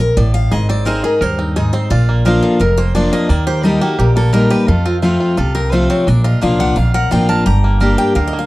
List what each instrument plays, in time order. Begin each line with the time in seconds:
Already playing: upright bass A#1, steel-string acoustic guitar F2
0.00 steel-string acoustic guitar A#4
0.17 upright bass A1, steel-string acoustic guitar A2 D5
0.34 steel-string acoustic guitar F5
0.51 upright bass G#1, steel-string acoustic guitar G#2 D#5, five-string banjo G#4
0.69 five-string banjo C4, steel-string acoustic guitar D5
0.85 steel-string acoustic guitar G#3 C4 D#4 G#4 C5, five-string banjo A#4
1.04 steel-string acoustic guitar D#4 G#4 A#4, five-string banjo G#4
1.21 upright bass D#2, steel-string acoustic guitar G2 C5, five-string banjo A#4
1.39 five-string banjo C4, steel-string acoustic guitar D#4
1.56 steel-string acoustic guitar G#2 G#4, five-string banjo D#4
1.73 five-string banjo C4, steel-string acoustic guitar C5
1.90 upright bass A#1, steel-string acoustic guitar A#2 D5, five-string banjo F4
2.09 five-string banjo A#3
2.25 steel-string acoustic guitar F3 A#3 D4 F4 C5, five-string banjo A#4
2.43 five-string banjo F4, steel-string acoustic guitar A4
2.60 upright bass F1, steel-string acoustic guitar F2 A#4, five-string banjo A#4
2.78 five-string banjo A#3, steel-string acoustic guitar C5
2.95 steel-string acoustic guitar F3 A#3 D4 F4 D5, five-string banjo D4
3.13 five-string banjo A#3, steel-string acoustic guitar D#5
3.29 upright bass D#2, steel-string acoustic guitar D#3 D5, five-string banjo A#3
3.47 five-string banjo G4, steel-string acoustic guitar C5
3.63 steel-string acoustic guitar G3 A#3 D#4 G4 A4, five-string banjo D#4
3.81 five-string banjo A#3, steel-string acoustic guitar D#4 F#4 G4
3.99 upright bass A#1, steel-string acoustic guitar A#2 G4, five-string banjo G4
4.16 five-string banjo A#3, steel-string acoustic guitar A4
4.33 steel-string acoustic guitar G3 A#3 D#4 G4 A#4, five-string banjo A#4
4.50 five-string banjo G4, steel-string acoustic guitar B4
4.68 upright bass F2, steel-string acoustic guitar F2 A4, five-string banjo F4
4.86 five-string banjo C4, steel-string acoustic guitar F4
5.02 steel-string acoustic guitar F3 A3 C4 F4, five-string banjo F4
5.20 five-string banjo F4
5.37 upright bass C2, steel-string acoustic guitar C3 A4, five-string banjo F4
5.55 five-string banjo C4, steel-string acoustic guitar A#4
5.72 steel-string acoustic guitar F3 A3 C4 F4 C5, five-string banjo F4
5.90 five-string banjo C4, steel-string acoustic guitar C#5
6.07 upright bass A#1, steel-string acoustic guitar A#2 D5, five-string banjo D4
6.24 five-string banjo F4, steel-string acoustic guitar D#5
6.41 upright bass C2, steel-string acoustic guitar F3 A#3 D4 F4 F5, five-string banjo A#3
6.59 five-string banjo D4, steel-string acoustic guitar F#5
6.76 upright bass A#1, steel-string acoustic guitar F2 F5, five-string banjo F4
6.94 five-string banjo A#4, steel-string acoustic guitar F#5
7.11 upright bass A1, steel-string acoustic guitar F3 A#3 D4 F4 G5, five-string banjo F4
7.29 five-string banjo A#4, steel-string acoustic guitar A5
7.46 upright bass G1, steel-string acoustic guitar G2 A#5, five-string banjo G4
7.64 five-string banjo A#3
7.80 steel-string acoustic guitar G3 A#3 D4 G4, five-string banjo A#4
7.98 five-string banjo G4, steel-string acoustic guitar G5
8.15 upright bass D2, steel-string acoustic guitar D3 F5, five-string banjo A#4
8.28 steel-string acoustic guitar D#5
8.33 five-string banjo A#3
8.39 steel-string acoustic guitar F5